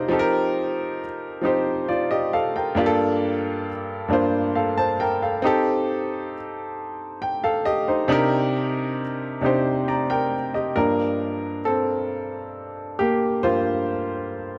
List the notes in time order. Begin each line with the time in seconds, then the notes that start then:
Already playing: C3 D4 D#4 F4 G4 A#4 C5 D5 D#5 G5 A#5
0.08 F3 C4 D#4 G4
0.13 A4
0.19 A#4
1.41 F3 C4 D#4 G4
1.46 C5
1.88 F4 D5
2.11 G4 D#5
2.33 A4 F5
2.56 A#4 G5
2.75 G2 A#3 D4 F4
2.79 G4
2.86 A4
4.08 G2 A#3 D4 F4
4.13 C5
4.55 A4 F5
4.78 C5 A5
5.00 A#4 G5
5.22 A4 F5
5.42 C4 D#4 G4
5.47 A4
7.22 G5
7.44 A4 F5
7.65 G4 D#5
7.88 D#4 C5
8.08 C3 D4 D#4 G4
8.12 A#4
9.41 C3 D4 D#4 G4
9.46 C5
9.88 D5 A#5
10.10 A#4 G5
10.54 G4 D#5
10.76 G2 F3 A#3 D4 A#4
11.65 C4 A4
12.99 A#3 G4
13.43 G2 F3 A#3 F4 C5